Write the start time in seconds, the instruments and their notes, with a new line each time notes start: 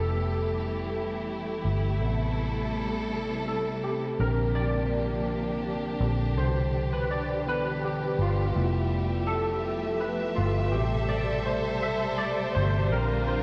Already playing: fingered electric bass F1, tine electric piano E3 G3 A3 B3 A4, string section E3 G3 A3 E4 G4
1.65 fingered electric bass G1
1.98 fingered electric bass A1, string section C3 G3 A4, tine electric piano C3 G3 B3
3.48 tine electric piano A4
3.83 fingered electric bass G1, tine electric piano G4
4.17 fingered electric bass A#1, tine electric piano D3 G3 C4 A#4, string section F3 A#3 D4 G4
4.55 tine electric piano D5
6.00 fingered electric bass A#1, tine electric piano D3 G3 C4
6.35 fingered electric bass C2, tine electric piano B2 D3 E3 C5, string section D3 G3
6.93 tine electric piano B4
7.11 tine electric piano D5
7.46 tine electric piano D3 E3 B3 B4
7.84 tine electric piano G4
8.19 fingered electric bass G1, tine electric piano F4
8.55 fingered electric bass F1, string section F3 A3 E5, tine electric piano G3 A3 B3 E4
9.27 tine electric piano A4
10.00 tine electric piano B4
10.36 fingered electric bass G1, tine electric piano F4
10.71 fingered electric bass A1, tine electric piano B2 C3 G3 G4, string section G3 A4 C5
11.09 tine electric piano D5
11.45 tine electric piano C5
11.82 tine electric piano E5
12.18 tine electric piano D5
12.55 fingered electric bass G1, tine electric piano B2 C3 G3 C5
12.90 fingered electric bass A#1, tine electric piano D3 G3 C4 A#4, string section D4 F4 A#4
13.28 tine electric piano C5